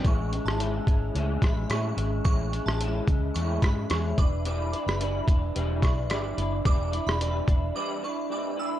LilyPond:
<<
  \new Staff \with { instrumentName = "Synth bell" } { \time 4/4 \key a \major \tempo 4 = 109 cis'''8 r16 a''8. r4 b''16 r16 cis'''8. r16 | cis'''8 r16 a''8. r8 cis'''8 b''16 r16 cis'''16 r16 d'''16 r16 | d'''8 r16 b''8. r4 cis'''16 r16 d'''8. r16 | d'''8 r16 b''8. r8 d'''8 cis'''16 r16 d'''16 r16 e'''16 r16 | }
  \new Staff \with { instrumentName = "Clean electric guitar" } { \time 4/4 \key a \major <a, e gis cis' e'>8 <gis cis' e'>8 <e gis cis' e'>8 <gis cis' e'>8 <a, e gis cis' e'>8 <gis cis' e'>8 <e gis cis' e'>8 <gis cis' e'>8 | <a, e gis cis' e'>8 <gis cis' e'>8 <e gis cis' e'>8 <gis cis' e'>8 <a, e gis cis' e'>8 <gis cis' e'>8 <e gis cis' e'>8 <d' e' b'>8 | <e g d' e' b'>8 <d' e' b'>8 <g d' e' b'>8 <d' e' b'>8 <e g d' e' b'>8 <d' e' b'>8 <g d' e' b'>8 <d' e' b'>8 | <e g d' e' b'>8 <d' e' b'>8 <g d' e' b'>8 <d' e' b'>8 <e g d' e' b'>8 <d' e' b'>8 <g d' e' b'>8 <d' e' b'>8 | }
  \new Staff \with { instrumentName = "Fingered electric bass" } { \clef bass \time 4/4 \key a \major a,,8. gis,,8. gis,,8 cis,8 a,,8 a,8 gis,,8 | a,,8. a,,8. cis,8 e,8 gis,8 e,8 e,,8~ | e,,8. fis,,8. e,,8 e,,8 b,,8 g,,8 fis,,8 | e,,8. e,,8. e,,8 r2 | }
  \new DrumStaff \with { instrumentName = "Drums" } \drummode { \time 4/4 <hh bd>8 hh16 ss16 hh8 <hh bd>8 hh8 <hh bd ss>8 <hh ss>8 hh8 | <hh bd>8 hh16 ss16 hh8 <hh bd>8 hh8 <hh bd ss>8 <hh ss>8 <hh bd>8 | hh8 hh16 ss16 hh8 <hh bd>8 hh8 <hh bd ss>8 <hh ss>8 hh8 | <hh bd>8 hh16 ss16 hh8 <hh bd>8 r4 r4 | }
>>